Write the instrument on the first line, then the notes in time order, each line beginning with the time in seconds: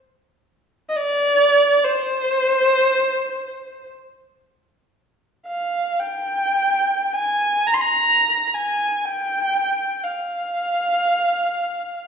kamancheh
0.89 D#5
0.96 D5
1.85 C5
5.47 F5
6.00 G5
7.14 G#5
7.67 A#5
7.74 C6
7.82 A#5
8.47 A#5
8.54 G#5
9.05 G5
10.04 F5